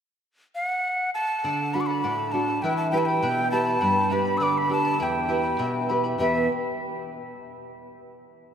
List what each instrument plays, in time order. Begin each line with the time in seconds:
0.55 quena F#5
1.14 quena A5
1.44 nylon-string guitar D3, charango A4 D5 F#5
1.74 nylon-string guitar D4 F#4 A4, charango A4 D5 F#5, quena B5
1.80 quena D6
1.86 charango D5 F#5, quena B5
2.04 nylon-string guitar A2, charango A4 D5 F#5
2.32 nylon-string guitar D4 F#4 A4, charango A4 D5 F#5, quena A5
2.48 charango D5 F#5
2.62 nylon-string guitar E3, charango E4 B4 E5 G5 B5, quena G5
2.77 quena A5
2.91 nylon-string guitar E4 G4 B4, charango E4 E5 G5 B5, quena G5
2.98 quena A5
3.05 charango E4 E5 B5, quena G5
3.22 nylon-string guitar B2, charango E4 B4 E5 G5 B5
3.51 charango E4 E5 G5 B5, nylon-string guitar E4 G4 B4, quena A5
3.66 charango E4 E5 B5
3.81 nylon-string guitar G2, charango G4 B4 D5 G5 B5
4.10 nylon-string guitar D4 G4 B4, charango B4 D5 G5 B5, quena B5
4.25 charango B4 D5 B5
4.37 nylon-string guitar D3, charango G4 B4 D5 G5 B5, quena E6
4.43 quena D6
4.53 quena D6
4.58 quena B5
4.69 nylon-string guitar D4 G4 B4, charango B4 D5 G5 B5, quena A5
4.85 charango B4 D5 B5
4.99 nylon-string guitar E2, charango E4 G4 E5 G5 B5
5.03 quena G5
5.28 nylon-string guitar E4 G4 B4, charango E4 E5 G5 B5
5.43 charango E4 E5 B5
5.58 nylon-string guitar B2, charango E4 G4 E5 G5 B5
5.89 charango E4 E5 G5 B5, nylon-string guitar E4 G4 B4
6.04 charango E4 E5 B5
6.18 nylon-string guitar E2 B2 E3 B3 G4 B4, charango E4 G4 E5 G5 B5, quena E5